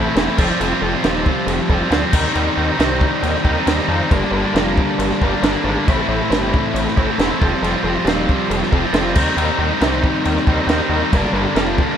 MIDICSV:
0, 0, Header, 1, 4, 480
1, 0, Start_track
1, 0, Tempo, 438596
1, 658, Time_signature, 4, 2, 24, 8
1, 13104, End_track
2, 0, Start_track
2, 0, Title_t, "Overdriven electric guitar"
2, 0, Program_c, 0, 29
2, 0, Note_on_c, 0, 45, 89
2, 0, Note_on_c, 0, 52, 101
2, 0, Note_on_c, 0, 57, 64
2, 0, Note_on_c, 0, 60, 72
2, 0, Note_on_c, 0, 64, 75
2, 154, Note_off_c, 0, 52, 0
2, 167, Note_on_c, 0, 52, 75
2, 173, Note_off_c, 0, 45, 0
2, 174, Note_off_c, 0, 57, 0
2, 188, Note_on_c, 0, 57, 85
2, 189, Note_off_c, 0, 60, 0
2, 193, Note_off_c, 0, 64, 0
2, 193, Note_on_c, 0, 60, 87
2, 206, Note_on_c, 0, 64, 86
2, 398, Note_off_c, 0, 52, 0
2, 401, Note_off_c, 0, 64, 0
2, 406, Note_on_c, 0, 65, 81
2, 408, Note_off_c, 0, 57, 0
2, 416, Note_off_c, 0, 60, 0
2, 420, Note_on_c, 0, 60, 79
2, 429, Note_on_c, 0, 55, 82
2, 439, Note_on_c, 0, 53, 76
2, 644, Note_off_c, 0, 53, 0
2, 657, Note_on_c, 0, 53, 99
2, 663, Note_off_c, 0, 55, 0
2, 668, Note_on_c, 0, 55, 88
2, 674, Note_off_c, 0, 60, 0
2, 675, Note_off_c, 0, 65, 0
2, 679, Note_on_c, 0, 60, 97
2, 688, Note_on_c, 0, 65, 97
2, 874, Note_off_c, 0, 65, 0
2, 887, Note_on_c, 0, 65, 71
2, 906, Note_off_c, 0, 60, 0
2, 910, Note_on_c, 0, 60, 64
2, 920, Note_off_c, 0, 55, 0
2, 928, Note_on_c, 0, 55, 57
2, 1111, Note_off_c, 0, 53, 0
2, 1124, Note_on_c, 0, 53, 98
2, 1133, Note_off_c, 0, 55, 0
2, 1138, Note_on_c, 0, 55, 102
2, 1139, Note_off_c, 0, 65, 0
2, 1142, Note_off_c, 0, 60, 0
2, 1147, Note_on_c, 0, 60, 99
2, 1152, Note_on_c, 0, 65, 102
2, 1829, Note_off_c, 0, 65, 0
2, 1842, Note_on_c, 0, 65, 74
2, 1849, Note_off_c, 0, 60, 0
2, 1862, Note_on_c, 0, 60, 70
2, 1872, Note_off_c, 0, 55, 0
2, 1876, Note_on_c, 0, 55, 63
2, 2055, Note_off_c, 0, 53, 0
2, 2068, Note_on_c, 0, 53, 80
2, 2084, Note_off_c, 0, 55, 0
2, 2089, Note_on_c, 0, 55, 78
2, 2090, Note_off_c, 0, 60, 0
2, 2096, Note_off_c, 0, 65, 0
2, 2103, Note_on_c, 0, 60, 84
2, 2109, Note_on_c, 0, 65, 84
2, 2307, Note_off_c, 0, 65, 0
2, 2309, Note_off_c, 0, 53, 0
2, 2312, Note_on_c, 0, 63, 95
2, 2315, Note_off_c, 0, 60, 0
2, 2328, Note_on_c, 0, 60, 83
2, 2340, Note_off_c, 0, 55, 0
2, 2344, Note_on_c, 0, 55, 79
2, 2352, Note_on_c, 0, 51, 82
2, 2530, Note_off_c, 0, 51, 0
2, 2543, Note_on_c, 0, 51, 102
2, 2553, Note_off_c, 0, 55, 0
2, 2555, Note_off_c, 0, 60, 0
2, 2557, Note_on_c, 0, 55, 100
2, 2566, Note_off_c, 0, 63, 0
2, 2568, Note_on_c, 0, 60, 92
2, 2579, Note_on_c, 0, 63, 108
2, 2769, Note_off_c, 0, 63, 0
2, 2783, Note_on_c, 0, 63, 78
2, 2795, Note_off_c, 0, 60, 0
2, 2808, Note_on_c, 0, 60, 67
2, 2819, Note_off_c, 0, 55, 0
2, 2823, Note_on_c, 0, 55, 64
2, 3012, Note_off_c, 0, 51, 0
2, 3025, Note_on_c, 0, 51, 99
2, 3031, Note_off_c, 0, 55, 0
2, 3036, Note_on_c, 0, 55, 104
2, 3037, Note_off_c, 0, 60, 0
2, 3043, Note_off_c, 0, 63, 0
2, 3050, Note_on_c, 0, 60, 102
2, 3056, Note_on_c, 0, 63, 99
2, 3749, Note_off_c, 0, 63, 0
2, 3760, Note_off_c, 0, 60, 0
2, 3762, Note_on_c, 0, 63, 76
2, 3774, Note_on_c, 0, 60, 70
2, 3784, Note_off_c, 0, 55, 0
2, 3797, Note_on_c, 0, 55, 65
2, 3986, Note_off_c, 0, 51, 0
2, 3998, Note_off_c, 0, 55, 0
2, 3999, Note_on_c, 0, 51, 81
2, 4011, Note_on_c, 0, 55, 90
2, 4013, Note_off_c, 0, 60, 0
2, 4023, Note_off_c, 0, 63, 0
2, 4026, Note_on_c, 0, 60, 82
2, 4036, Note_on_c, 0, 63, 83
2, 4234, Note_off_c, 0, 63, 0
2, 4247, Note_on_c, 0, 63, 70
2, 4256, Note_off_c, 0, 60, 0
2, 4269, Note_on_c, 0, 60, 67
2, 4274, Note_off_c, 0, 55, 0
2, 4287, Note_on_c, 0, 55, 61
2, 4475, Note_off_c, 0, 51, 0
2, 4479, Note_off_c, 0, 63, 0
2, 4485, Note_on_c, 0, 43, 92
2, 4487, Note_off_c, 0, 55, 0
2, 4490, Note_off_c, 0, 60, 0
2, 4493, Note_on_c, 0, 50, 103
2, 4500, Note_on_c, 0, 55, 101
2, 4509, Note_on_c, 0, 58, 105
2, 4519, Note_on_c, 0, 62, 107
2, 4721, Note_off_c, 0, 62, 0
2, 4734, Note_on_c, 0, 62, 71
2, 4742, Note_off_c, 0, 58, 0
2, 4756, Note_off_c, 0, 55, 0
2, 4756, Note_on_c, 0, 58, 66
2, 4770, Note_on_c, 0, 55, 60
2, 4953, Note_off_c, 0, 43, 0
2, 4966, Note_off_c, 0, 50, 0
2, 4966, Note_on_c, 0, 43, 93
2, 4975, Note_off_c, 0, 55, 0
2, 4979, Note_on_c, 0, 50, 95
2, 4987, Note_off_c, 0, 58, 0
2, 4988, Note_on_c, 0, 55, 93
2, 4990, Note_off_c, 0, 62, 0
2, 5000, Note_on_c, 0, 58, 103
2, 5003, Note_on_c, 0, 62, 104
2, 5687, Note_off_c, 0, 62, 0
2, 5700, Note_on_c, 0, 62, 71
2, 5703, Note_off_c, 0, 58, 0
2, 5717, Note_on_c, 0, 58, 66
2, 5722, Note_off_c, 0, 55, 0
2, 5735, Note_on_c, 0, 55, 62
2, 5924, Note_off_c, 0, 50, 0
2, 5934, Note_off_c, 0, 43, 0
2, 5937, Note_on_c, 0, 50, 78
2, 5940, Note_off_c, 0, 55, 0
2, 5953, Note_off_c, 0, 58, 0
2, 5953, Note_on_c, 0, 55, 80
2, 5966, Note_off_c, 0, 62, 0
2, 5966, Note_on_c, 0, 58, 88
2, 5979, Note_on_c, 0, 62, 91
2, 6163, Note_off_c, 0, 62, 0
2, 6177, Note_off_c, 0, 58, 0
2, 6177, Note_on_c, 0, 62, 70
2, 6190, Note_on_c, 0, 58, 63
2, 6197, Note_off_c, 0, 55, 0
2, 6211, Note_on_c, 0, 55, 63
2, 6405, Note_off_c, 0, 50, 0
2, 6405, Note_off_c, 0, 62, 0
2, 6406, Note_on_c, 0, 45, 98
2, 6411, Note_off_c, 0, 58, 0
2, 6420, Note_on_c, 0, 52, 94
2, 6422, Note_off_c, 0, 55, 0
2, 6433, Note_on_c, 0, 57, 93
2, 6437, Note_on_c, 0, 60, 95
2, 6445, Note_on_c, 0, 64, 111
2, 6642, Note_off_c, 0, 64, 0
2, 6655, Note_on_c, 0, 64, 74
2, 6675, Note_off_c, 0, 60, 0
2, 6679, Note_on_c, 0, 60, 69
2, 6680, Note_off_c, 0, 57, 0
2, 6694, Note_on_c, 0, 57, 64
2, 6889, Note_off_c, 0, 45, 0
2, 6901, Note_off_c, 0, 52, 0
2, 6903, Note_off_c, 0, 57, 0
2, 6903, Note_on_c, 0, 45, 93
2, 6914, Note_on_c, 0, 52, 102
2, 6916, Note_on_c, 0, 57, 103
2, 6923, Note_off_c, 0, 64, 0
2, 6924, Note_off_c, 0, 60, 0
2, 6929, Note_on_c, 0, 60, 95
2, 6936, Note_on_c, 0, 64, 104
2, 7610, Note_off_c, 0, 64, 0
2, 7623, Note_on_c, 0, 64, 72
2, 7638, Note_off_c, 0, 60, 0
2, 7643, Note_on_c, 0, 60, 75
2, 7647, Note_off_c, 0, 57, 0
2, 7660, Note_on_c, 0, 57, 62
2, 7854, Note_off_c, 0, 52, 0
2, 7862, Note_off_c, 0, 45, 0
2, 7867, Note_off_c, 0, 57, 0
2, 7867, Note_on_c, 0, 52, 82
2, 7880, Note_on_c, 0, 57, 89
2, 7885, Note_off_c, 0, 60, 0
2, 7888, Note_off_c, 0, 64, 0
2, 7889, Note_on_c, 0, 60, 90
2, 7902, Note_on_c, 0, 64, 93
2, 8090, Note_off_c, 0, 52, 0
2, 8092, Note_off_c, 0, 64, 0
2, 8096, Note_off_c, 0, 57, 0
2, 8096, Note_on_c, 0, 65, 82
2, 8107, Note_off_c, 0, 60, 0
2, 8112, Note_on_c, 0, 60, 86
2, 8126, Note_on_c, 0, 55, 82
2, 8130, Note_on_c, 0, 53, 77
2, 8331, Note_off_c, 0, 53, 0
2, 8344, Note_on_c, 0, 53, 101
2, 8358, Note_off_c, 0, 55, 0
2, 8363, Note_on_c, 0, 55, 100
2, 8367, Note_off_c, 0, 60, 0
2, 8369, Note_off_c, 0, 65, 0
2, 8372, Note_on_c, 0, 60, 105
2, 8382, Note_on_c, 0, 65, 108
2, 8573, Note_off_c, 0, 65, 0
2, 8586, Note_on_c, 0, 65, 75
2, 8597, Note_off_c, 0, 60, 0
2, 8602, Note_on_c, 0, 60, 69
2, 8613, Note_off_c, 0, 55, 0
2, 8618, Note_on_c, 0, 55, 60
2, 8805, Note_off_c, 0, 53, 0
2, 8818, Note_on_c, 0, 53, 99
2, 8826, Note_off_c, 0, 55, 0
2, 8830, Note_on_c, 0, 55, 104
2, 8837, Note_off_c, 0, 60, 0
2, 8838, Note_off_c, 0, 65, 0
2, 8841, Note_on_c, 0, 60, 103
2, 8851, Note_on_c, 0, 65, 104
2, 9522, Note_off_c, 0, 65, 0
2, 9535, Note_on_c, 0, 65, 79
2, 9543, Note_off_c, 0, 60, 0
2, 9556, Note_on_c, 0, 60, 74
2, 9568, Note_off_c, 0, 55, 0
2, 9574, Note_on_c, 0, 55, 66
2, 9760, Note_off_c, 0, 53, 0
2, 9773, Note_on_c, 0, 53, 77
2, 9776, Note_off_c, 0, 55, 0
2, 9780, Note_on_c, 0, 55, 88
2, 9781, Note_off_c, 0, 60, 0
2, 9793, Note_off_c, 0, 65, 0
2, 9794, Note_on_c, 0, 60, 80
2, 9806, Note_on_c, 0, 65, 89
2, 10002, Note_off_c, 0, 53, 0
2, 10003, Note_off_c, 0, 65, 0
2, 10007, Note_on_c, 0, 63, 95
2, 10009, Note_off_c, 0, 60, 0
2, 10022, Note_on_c, 0, 60, 85
2, 10033, Note_off_c, 0, 55, 0
2, 10037, Note_on_c, 0, 55, 81
2, 10044, Note_on_c, 0, 51, 74
2, 10232, Note_off_c, 0, 51, 0
2, 10245, Note_on_c, 0, 51, 98
2, 10251, Note_off_c, 0, 55, 0
2, 10255, Note_on_c, 0, 55, 104
2, 10258, Note_off_c, 0, 60, 0
2, 10269, Note_off_c, 0, 63, 0
2, 10271, Note_on_c, 0, 60, 93
2, 10282, Note_on_c, 0, 63, 112
2, 10481, Note_off_c, 0, 63, 0
2, 10494, Note_on_c, 0, 63, 75
2, 10501, Note_off_c, 0, 60, 0
2, 10514, Note_on_c, 0, 60, 66
2, 10520, Note_off_c, 0, 55, 0
2, 10524, Note_on_c, 0, 55, 62
2, 10724, Note_off_c, 0, 51, 0
2, 10737, Note_on_c, 0, 51, 93
2, 10743, Note_off_c, 0, 55, 0
2, 10747, Note_on_c, 0, 55, 97
2, 10750, Note_off_c, 0, 60, 0
2, 10757, Note_off_c, 0, 63, 0
2, 10763, Note_on_c, 0, 60, 111
2, 10770, Note_on_c, 0, 63, 116
2, 11436, Note_off_c, 0, 63, 0
2, 11450, Note_on_c, 0, 63, 71
2, 11461, Note_off_c, 0, 60, 0
2, 11474, Note_on_c, 0, 60, 70
2, 11476, Note_off_c, 0, 55, 0
2, 11489, Note_on_c, 0, 55, 66
2, 11684, Note_off_c, 0, 51, 0
2, 11696, Note_off_c, 0, 55, 0
2, 11697, Note_on_c, 0, 51, 77
2, 11708, Note_off_c, 0, 60, 0
2, 11709, Note_on_c, 0, 55, 89
2, 11722, Note_off_c, 0, 63, 0
2, 11722, Note_on_c, 0, 60, 91
2, 11735, Note_on_c, 0, 63, 85
2, 11921, Note_off_c, 0, 63, 0
2, 11934, Note_on_c, 0, 63, 72
2, 11941, Note_off_c, 0, 60, 0
2, 11954, Note_on_c, 0, 60, 72
2, 11955, Note_off_c, 0, 55, 0
2, 11968, Note_on_c, 0, 55, 61
2, 12160, Note_off_c, 0, 63, 0
2, 12161, Note_off_c, 0, 51, 0
2, 12166, Note_on_c, 0, 43, 96
2, 12170, Note_off_c, 0, 60, 0
2, 12174, Note_off_c, 0, 55, 0
2, 12179, Note_on_c, 0, 50, 97
2, 12187, Note_on_c, 0, 55, 97
2, 12194, Note_on_c, 0, 58, 100
2, 12205, Note_on_c, 0, 62, 109
2, 12395, Note_off_c, 0, 62, 0
2, 12408, Note_on_c, 0, 62, 76
2, 12414, Note_off_c, 0, 58, 0
2, 12427, Note_on_c, 0, 58, 70
2, 12431, Note_off_c, 0, 55, 0
2, 12444, Note_on_c, 0, 55, 57
2, 12628, Note_off_c, 0, 43, 0
2, 12640, Note_off_c, 0, 50, 0
2, 12641, Note_on_c, 0, 43, 93
2, 12652, Note_off_c, 0, 55, 0
2, 12653, Note_on_c, 0, 50, 89
2, 12658, Note_off_c, 0, 58, 0
2, 12665, Note_on_c, 0, 55, 104
2, 12666, Note_off_c, 0, 62, 0
2, 12671, Note_on_c, 0, 58, 99
2, 12679, Note_on_c, 0, 62, 99
2, 13104, Note_off_c, 0, 43, 0
2, 13104, Note_off_c, 0, 50, 0
2, 13104, Note_off_c, 0, 55, 0
2, 13104, Note_off_c, 0, 58, 0
2, 13104, Note_off_c, 0, 62, 0
2, 13104, End_track
3, 0, Start_track
3, 0, Title_t, "Analog synth bass"
3, 0, Program_c, 1, 38
3, 166, Note_on_c, 1, 28, 97
3, 316, Note_off_c, 1, 28, 0
3, 416, Note_on_c, 1, 29, 99
3, 563, Note_off_c, 1, 29, 0
3, 659, Note_on_c, 1, 29, 98
3, 805, Note_off_c, 1, 29, 0
3, 892, Note_on_c, 1, 29, 91
3, 1041, Note_off_c, 1, 29, 0
3, 1139, Note_on_c, 1, 27, 87
3, 1432, Note_off_c, 1, 27, 0
3, 1603, Note_on_c, 1, 29, 101
3, 1754, Note_off_c, 1, 29, 0
3, 1852, Note_on_c, 1, 29, 96
3, 2001, Note_off_c, 1, 29, 0
3, 2085, Note_on_c, 1, 38, 97
3, 2236, Note_off_c, 1, 38, 0
3, 2333, Note_on_c, 1, 39, 93
3, 2481, Note_off_c, 1, 39, 0
3, 2577, Note_on_c, 1, 39, 99
3, 2724, Note_off_c, 1, 39, 0
3, 2815, Note_on_c, 1, 39, 92
3, 2963, Note_off_c, 1, 39, 0
3, 3055, Note_on_c, 1, 36, 90
3, 3350, Note_off_c, 1, 36, 0
3, 3532, Note_on_c, 1, 39, 98
3, 3681, Note_off_c, 1, 39, 0
3, 3771, Note_on_c, 1, 39, 93
3, 3920, Note_off_c, 1, 39, 0
3, 4012, Note_on_c, 1, 39, 96
3, 4161, Note_off_c, 1, 39, 0
3, 4249, Note_on_c, 1, 41, 91
3, 4399, Note_off_c, 1, 41, 0
3, 4497, Note_on_c, 1, 31, 101
3, 4644, Note_off_c, 1, 31, 0
3, 4718, Note_on_c, 1, 31, 92
3, 4871, Note_off_c, 1, 31, 0
3, 4970, Note_on_c, 1, 29, 92
3, 5267, Note_off_c, 1, 29, 0
3, 5457, Note_on_c, 1, 31, 98
3, 5605, Note_off_c, 1, 31, 0
3, 5711, Note_on_c, 1, 31, 94
3, 5855, Note_off_c, 1, 31, 0
3, 5938, Note_on_c, 1, 31, 94
3, 6085, Note_off_c, 1, 31, 0
3, 6173, Note_on_c, 1, 32, 97
3, 6322, Note_off_c, 1, 32, 0
3, 6432, Note_on_c, 1, 33, 102
3, 6575, Note_off_c, 1, 33, 0
3, 6657, Note_on_c, 1, 33, 90
3, 6805, Note_off_c, 1, 33, 0
3, 6897, Note_on_c, 1, 31, 92
3, 7192, Note_off_c, 1, 31, 0
3, 7377, Note_on_c, 1, 33, 100
3, 7525, Note_off_c, 1, 33, 0
3, 7628, Note_on_c, 1, 33, 93
3, 7773, Note_off_c, 1, 33, 0
3, 7863, Note_on_c, 1, 28, 96
3, 8009, Note_off_c, 1, 28, 0
3, 8118, Note_on_c, 1, 29, 93
3, 8260, Note_off_c, 1, 29, 0
3, 8341, Note_on_c, 1, 29, 92
3, 8487, Note_off_c, 1, 29, 0
3, 8575, Note_on_c, 1, 29, 85
3, 8724, Note_off_c, 1, 29, 0
3, 8806, Note_on_c, 1, 27, 90
3, 9104, Note_off_c, 1, 27, 0
3, 9301, Note_on_c, 1, 29, 98
3, 9448, Note_off_c, 1, 29, 0
3, 9541, Note_on_c, 1, 29, 97
3, 9687, Note_off_c, 1, 29, 0
3, 9772, Note_on_c, 1, 29, 102
3, 10022, Note_on_c, 1, 39, 95
3, 10039, Note_off_c, 1, 29, 0
3, 10168, Note_off_c, 1, 39, 0
3, 10253, Note_on_c, 1, 39, 92
3, 10401, Note_off_c, 1, 39, 0
3, 10490, Note_on_c, 1, 39, 84
3, 10639, Note_off_c, 1, 39, 0
3, 10736, Note_on_c, 1, 36, 95
3, 11029, Note_off_c, 1, 36, 0
3, 11224, Note_on_c, 1, 39, 100
3, 11368, Note_off_c, 1, 39, 0
3, 11461, Note_on_c, 1, 39, 94
3, 11606, Note_off_c, 1, 39, 0
3, 11675, Note_on_c, 1, 39, 93
3, 11828, Note_off_c, 1, 39, 0
3, 11921, Note_on_c, 1, 39, 91
3, 12072, Note_off_c, 1, 39, 0
3, 12181, Note_on_c, 1, 31, 101
3, 12326, Note_off_c, 1, 31, 0
3, 12397, Note_on_c, 1, 31, 91
3, 12549, Note_off_c, 1, 31, 0
3, 12643, Note_on_c, 1, 29, 94
3, 12940, Note_off_c, 1, 29, 0
3, 13104, End_track
4, 0, Start_track
4, 0, Title_t, "Drums"
4, 180, Note_on_c, 9, 49, 64
4, 190, Note_on_c, 9, 38, 111
4, 289, Note_off_c, 9, 49, 0
4, 299, Note_off_c, 9, 38, 0
4, 308, Note_on_c, 9, 38, 35
4, 417, Note_off_c, 9, 38, 0
4, 419, Note_on_c, 9, 49, 106
4, 421, Note_on_c, 9, 36, 107
4, 528, Note_off_c, 9, 49, 0
4, 531, Note_off_c, 9, 36, 0
4, 666, Note_on_c, 9, 49, 72
4, 775, Note_off_c, 9, 49, 0
4, 1136, Note_on_c, 9, 49, 68
4, 1146, Note_on_c, 9, 38, 108
4, 1245, Note_off_c, 9, 49, 0
4, 1255, Note_off_c, 9, 38, 0
4, 1379, Note_on_c, 9, 36, 92
4, 1489, Note_off_c, 9, 36, 0
4, 1618, Note_on_c, 9, 49, 68
4, 1728, Note_off_c, 9, 49, 0
4, 1856, Note_on_c, 9, 36, 86
4, 1965, Note_off_c, 9, 36, 0
4, 2097, Note_on_c, 9, 49, 61
4, 2107, Note_on_c, 9, 38, 111
4, 2206, Note_off_c, 9, 49, 0
4, 2216, Note_off_c, 9, 38, 0
4, 2330, Note_on_c, 9, 49, 108
4, 2333, Note_on_c, 9, 36, 102
4, 2440, Note_off_c, 9, 49, 0
4, 2442, Note_off_c, 9, 36, 0
4, 2575, Note_on_c, 9, 49, 61
4, 2685, Note_off_c, 9, 49, 0
4, 3061, Note_on_c, 9, 49, 62
4, 3071, Note_on_c, 9, 38, 110
4, 3170, Note_off_c, 9, 49, 0
4, 3180, Note_off_c, 9, 38, 0
4, 3295, Note_on_c, 9, 36, 90
4, 3405, Note_off_c, 9, 36, 0
4, 3539, Note_on_c, 9, 49, 62
4, 3649, Note_off_c, 9, 49, 0
4, 3669, Note_on_c, 9, 38, 33
4, 3773, Note_on_c, 9, 36, 83
4, 3779, Note_off_c, 9, 38, 0
4, 3882, Note_off_c, 9, 36, 0
4, 4017, Note_on_c, 9, 49, 66
4, 4027, Note_on_c, 9, 38, 109
4, 4127, Note_off_c, 9, 49, 0
4, 4136, Note_off_c, 9, 38, 0
4, 4152, Note_on_c, 9, 38, 36
4, 4261, Note_off_c, 9, 38, 0
4, 4501, Note_on_c, 9, 36, 116
4, 4503, Note_on_c, 9, 49, 64
4, 4610, Note_off_c, 9, 36, 0
4, 4612, Note_off_c, 9, 49, 0
4, 4986, Note_on_c, 9, 49, 65
4, 4996, Note_on_c, 9, 38, 108
4, 5096, Note_off_c, 9, 49, 0
4, 5105, Note_off_c, 9, 38, 0
4, 5226, Note_on_c, 9, 36, 92
4, 5335, Note_off_c, 9, 36, 0
4, 5468, Note_on_c, 9, 49, 68
4, 5577, Note_off_c, 9, 49, 0
4, 5595, Note_on_c, 9, 38, 34
4, 5705, Note_off_c, 9, 38, 0
4, 5708, Note_on_c, 9, 36, 83
4, 5817, Note_off_c, 9, 36, 0
4, 5946, Note_on_c, 9, 49, 66
4, 5956, Note_on_c, 9, 38, 112
4, 6056, Note_off_c, 9, 49, 0
4, 6066, Note_off_c, 9, 38, 0
4, 6435, Note_on_c, 9, 36, 117
4, 6435, Note_on_c, 9, 49, 63
4, 6544, Note_off_c, 9, 49, 0
4, 6545, Note_off_c, 9, 36, 0
4, 6916, Note_on_c, 9, 49, 62
4, 6926, Note_on_c, 9, 38, 113
4, 7026, Note_off_c, 9, 49, 0
4, 7036, Note_off_c, 9, 38, 0
4, 7156, Note_on_c, 9, 36, 95
4, 7266, Note_off_c, 9, 36, 0
4, 7399, Note_on_c, 9, 49, 64
4, 7508, Note_off_c, 9, 49, 0
4, 7531, Note_on_c, 9, 38, 33
4, 7632, Note_on_c, 9, 36, 86
4, 7640, Note_off_c, 9, 38, 0
4, 7742, Note_off_c, 9, 36, 0
4, 7872, Note_on_c, 9, 49, 59
4, 7882, Note_on_c, 9, 38, 110
4, 7982, Note_off_c, 9, 49, 0
4, 7992, Note_off_c, 9, 38, 0
4, 8116, Note_on_c, 9, 36, 108
4, 8226, Note_off_c, 9, 36, 0
4, 8364, Note_on_c, 9, 49, 63
4, 8474, Note_off_c, 9, 49, 0
4, 8832, Note_on_c, 9, 49, 63
4, 8842, Note_on_c, 9, 38, 112
4, 8942, Note_off_c, 9, 49, 0
4, 8952, Note_off_c, 9, 38, 0
4, 9074, Note_on_c, 9, 36, 89
4, 9183, Note_off_c, 9, 36, 0
4, 9315, Note_on_c, 9, 49, 70
4, 9425, Note_off_c, 9, 49, 0
4, 9444, Note_on_c, 9, 38, 33
4, 9549, Note_on_c, 9, 36, 91
4, 9554, Note_off_c, 9, 38, 0
4, 9659, Note_off_c, 9, 36, 0
4, 9781, Note_on_c, 9, 49, 67
4, 9791, Note_on_c, 9, 38, 117
4, 9890, Note_off_c, 9, 49, 0
4, 9900, Note_off_c, 9, 38, 0
4, 9921, Note_on_c, 9, 38, 35
4, 10018, Note_on_c, 9, 49, 107
4, 10026, Note_on_c, 9, 36, 109
4, 10030, Note_off_c, 9, 38, 0
4, 10128, Note_off_c, 9, 49, 0
4, 10135, Note_off_c, 9, 36, 0
4, 10265, Note_on_c, 9, 49, 66
4, 10374, Note_off_c, 9, 49, 0
4, 10740, Note_on_c, 9, 49, 64
4, 10750, Note_on_c, 9, 38, 114
4, 10849, Note_off_c, 9, 49, 0
4, 10859, Note_off_c, 9, 38, 0
4, 10984, Note_on_c, 9, 36, 87
4, 11094, Note_off_c, 9, 36, 0
4, 11221, Note_on_c, 9, 49, 64
4, 11330, Note_off_c, 9, 49, 0
4, 11348, Note_on_c, 9, 38, 31
4, 11457, Note_off_c, 9, 38, 0
4, 11460, Note_on_c, 9, 36, 87
4, 11569, Note_off_c, 9, 36, 0
4, 11698, Note_on_c, 9, 49, 58
4, 11707, Note_on_c, 9, 38, 119
4, 11807, Note_off_c, 9, 49, 0
4, 11817, Note_off_c, 9, 38, 0
4, 12180, Note_on_c, 9, 36, 120
4, 12181, Note_on_c, 9, 49, 66
4, 12289, Note_off_c, 9, 36, 0
4, 12291, Note_off_c, 9, 49, 0
4, 12653, Note_on_c, 9, 49, 59
4, 12663, Note_on_c, 9, 38, 105
4, 12763, Note_off_c, 9, 49, 0
4, 12772, Note_off_c, 9, 38, 0
4, 12896, Note_on_c, 9, 36, 89
4, 13006, Note_off_c, 9, 36, 0
4, 13104, End_track
0, 0, End_of_file